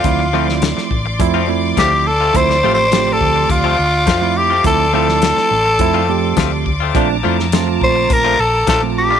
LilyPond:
<<
  \new Staff \with { instrumentName = "String section" } { \time 4/4 \key d \minor \tempo 4 = 104 << { d'''1~ | d'''1~ | d'''1~ | d'''1 | } \\ { <d'' c'''>1~ | <d'' c'''>1~ | <d'' c'''>1 | <a'' bes''>1 | } >> }
  \new Staff \with { instrumentName = "Tenor saxophone" } { \time 4/4 \key d \minor f'4 r2 g'8 a'8 | \tuplet 3/2 { c''4 c''8~ c''8 a'4 } f'4. g'8 | a'8 a'2. r8 | r4. c''8 bes'8 a'8 a'8 g'8 | }
  \new Staff \with { instrumentName = "Clean electric guitar" } { \time 4/4 \key d \minor r8 <f a c' f'>16 r4. <f a c' f'>16 r8 <f a c' f'>16 r8 <a c' f'>16 | r8 <f a c' f'>16 r4. <f a c' f'>16 r8 <f a c' f'>16 r8 <a c' f'>16 | r8 <f a c' f'>16 r4. <f a c' f'>16 r8 <f a c' f'>16 r8 <a c' f'>16 | <f a d' f'>16 r16 <f a d' f'>16 r4. <f a d' f'>16 r8 <f a d' f'>16 r8 <a d' f'>16 | }
  \new Staff \with { instrumentName = "Tine electric piano" } { \time 4/4 \key d \minor <f a c' e'>16 r16 <f a c' e'>4 r8 <f a c' e'>16 r16 <f a c' e'>4 r8 | <f a c' e'>16 r16 <f a c' g'>16 r16 <f a c' g'>4. r8. <f a c' e'>8 r16 | <f a c' e'>16 r16 <f a c' e'>4 r8 <f a c' e'>16 r16 <f a c' g'>4 r8 | <f a c' d'>16 r16 <f a c' e'>16 r16 <f a c' f'>4. r8. <f a c' f'>8 r16 | }
  \new Staff \with { instrumentName = "Fingered electric bass" } { \clef bass \time 4/4 \key d \minor d,4~ d,16 r16 a,,8 f,4 d,4 | d,8 a,,4 d,8 d,8 d,8 f,4 | d,4~ d,16 r16 a,,8 f,4 d,4 | bes,,8 f,4 bes,,8 bes,,8 bes,,8 bes,,4 | }
  \new DrumStaff \with { instrumentName = "Drums" } \drummode { \time 4/4 <hh bd>8. sn16 <hh sn>16 sn16 bd8 <hh bd>4 <hh bd sn>4 | <hh bd>16 sn8. <hh sn>8 bd8 <hh bd>4 <hh bd sn>4 | <hh bd>8. sn16 <hh sn>16 sn8. <hh bd>4 <hh bd sn>8 bd8 | <hh bd>8. sn16 <hh sn>8 bd8 <hh bd>4 <hh bd sn>4 | }
>>